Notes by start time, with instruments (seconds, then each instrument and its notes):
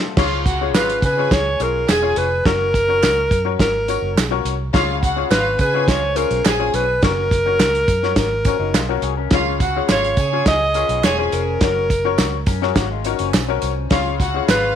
Already playing: clean electric guitar A3 F4
0.17 fingered electric bass C#2, upright piano C#3 C#4 F4 G#4 C#5, violin section F4 F5, kick, snare, crash
0.46 violin section F#4 F#5, kick, closed hi-hat, tambourine
0.61 upright piano C#4 F4 G#4 C#5
0.74 fingered electric bass G#1, violin section F4 F5, alto saxophone B4, snare, clap, closed hi-hat, tambourine
0.90 closed hi-hat
1.02 fingered electric bass C#3, violin section G#4 G#5, alto saxophone B4, kick, closed hi-hat, tambourine
1.17 upright piano C#4 F4 G#4 C#5
1.31 fingered electric bass C#2, alto saxophone C#5, kick, snare, closed hi-hat, tambourine
1.60 fingered electric bass B1, upright piano C#4 F4 G#4 C#5, alto saxophone A#4, closed hi-hat, tambourine
1.89 fingered electric bass E1, violin section G#4 G#5, alto saxophone G#4, snare, clap, closed hi-hat, tambourine
2.02 upright piano C#4 F4 G#4 C#5
2.16 fingered electric bass F1, alto saxophone B4, closed hi-hat
2.46 fingered electric bass F#1, upright piano C#4 F#4 A#4 C#5, alto saxophone A#4, kick, snare, closed hi-hat
2.74 kick, closed hi-hat, tambourine
2.88 upright piano C#4 F#4 A#4 C#5
3.03 fingered electric bass C#2, snare, clap, closed hi-hat, tambourine
3.31 fingered electric bass F#2, kick, closed hi-hat, tambourine
3.45 upright piano C#4 F#4 A#4 C#5
3.60 fingered electric bass G#1, alto saxophone A#4, kick, snare, closed hi-hat, tambourine
3.88 upright piano C#4 F#4 A#4 C#5, closed hi-hat, tambourine
4.02 fingered electric bass F#1
4.16 fingered electric bass B1, snare, clap, closed hi-hat, tambourine
4.31 upright piano C#4 F#4 A#4 C#5
4.45 fingered electric bass C2, closed hi-hat, tambourine
4.73 fingered electric bass C#2, upright piano C#3 C#4 F4 G#4 C#5, violin section F4 F5, kick, snare, closed hi-hat, tambourine
5.03 violin section F#4 F#5, kick, closed hi-hat, tambourine
5.16 upright piano C#4 F4 G#4 C#5
5.31 fingered electric bass G#1, violin section F4 F5, alto saxophone B4, snare, clap, closed hi-hat, tambourine
5.59 fingered electric bass C#3, violin section G#4 G#5, alto saxophone B4, kick, closed hi-hat, tambourine
5.74 clean electric guitar B3 G#4, upright piano C#4 F4 G#4 C#5
5.88 fingered electric bass C#2, clean electric guitar G#3 F4, alto saxophone C#5, kick, snare, closed hi-hat, tambourine
6.03 clean electric guitar F3 C#4
6.16 upright piano C#4 F4 G#4 C#5, alto saxophone A#4, closed hi-hat, tambourine
6.31 fingered electric bass B1, closed hi-hat
6.45 fingered electric bass A#1, alto saxophone G#4, violin section G#4 G#5, snare, clap, closed hi-hat, tambourine
6.59 upright piano C#4 F4 G#4 C#5
6.74 fingered electric bass B1, alto saxophone B4, closed hi-hat, tambourine
7.02 fingered electric bass F#1, upright piano C#4 F#4 A#4 C#5, alto saxophone A#4, kick, snare, closed hi-hat, tambourine
7.31 kick, closed hi-hat, tambourine
7.46 upright piano C#4 F#4 A#4 C#5
7.59 fingered electric bass C#2, snare, clap, closed hi-hat, tambourine
7.75 closed hi-hat
7.88 fingered electric bass F#2, kick, closed hi-hat, tambourine
8.03 upright piano C#4 F#4 A#4 C#5, snare
8.16 fingered electric bass G#1, alto saxophone A#4, kick, snare, closed hi-hat, tambourine
8.45 clean electric guitar F3 C#4, upright piano C#4 F#4 A#4 C#5, kick, closed hi-hat, tambourine
8.59 fingered electric bass F#1, clean electric guitar F#3 D#4
8.74 fingered electric bass B1, clean electric guitar G#3 F4, snare, clap, closed hi-hat, tambourine
8.88 clean electric guitar A#3 F#4, upright piano C#4 F#4 A#4 C#5
9.02 fingered electric bass C2, clean electric guitar G#4, closed hi-hat
9.17 clean electric guitar C#4 A#4
9.31 fingered electric bass C#2, upright piano C#3 C#4 F4 G#4 C#5, violin section F4 F5, kick, snare, closed hi-hat
9.60 violin section F#4 F#5, kick, closed hi-hat, tambourine
9.76 upright piano C#4 F4 G#4 C#5
9.89 fingered electric bass G#1, violin section F4 F5, alto saxophone C#5, snare, clap, closed hi-hat, tambourine
10.04 closed hi-hat
10.17 fingered electric bass C#3, violin section G#4 G#5, kick, closed hi-hat, tambourine
10.33 upright piano C#4 F4 G#4 C#5
10.46 fingered electric bass C#2, alto saxophone D#5, kick, snare, closed hi-hat, tambourine
10.74 upright piano C#4 F4 G#4 C#5, clean electric guitar C#4 A#4, closed hi-hat, tambourine
10.89 fingered electric bass B1, clean electric guitar B3 G#4, closed hi-hat
11.04 fingered electric bass E1, clean electric guitar G#3 F4, violin section G#4 G#5, alto saxophone C#5, snare, clap, closed hi-hat, tambourine
11.18 clean electric guitar F3 C#4, upright piano C#4 F4 G#4 C#5
11.32 fingered electric bass F1, alto saxophone A#4, closed hi-hat, tambourine
11.61 fingered electric bass F#1, upright piano C#4 F#4 A#4 C#5, kick, snare, closed hi-hat
11.90 kick, closed hi-hat, tambourine
12.05 upright piano C#4 F#4 A#4 C#5
12.18 fingered electric bass C#2, snare, clap, closed hi-hat, tambourine
12.46 fingered electric bass F#2, clean electric guitar C#4 A#4, kick, closed hi-hat, tambourine
12.62 upright piano C#4 F#4 A#4 C#5, clean electric guitar G#4, snare
12.76 fingered electric bass G#1, clean electric guitar A#3 F#4, kick, snare, closed hi-hat, tambourine
12.91 clean electric guitar G#3 F4
13.04 clean electric guitar F#3 D#4, upright piano C#4 F#4 A#4 C#5, closed hi-hat, tambourine
13.19 fingered electric bass F#1, clean electric guitar F3 C#4, closed hi-hat
13.34 fingered electric bass B1, snare, clap, closed hi-hat, tambourine
13.48 upright piano C#4 F#4 A#4 C#5
13.62 fingered electric bass C2, closed hi-hat, tambourine
13.91 fingered electric bass C#2, upright piano C#3 C#4 F4 G#4 C#5, violin section F4 F5, kick, snare, closed hi-hat
14.20 violin section F#4 F#5, kick, closed hi-hat, tambourine
14.34 upright piano C#4 F4 G#4 C#5
14.47 fingered electric bass G#1, violin section F4 F5, alto saxophone B4, snare, clap, closed hi-hat, tambourine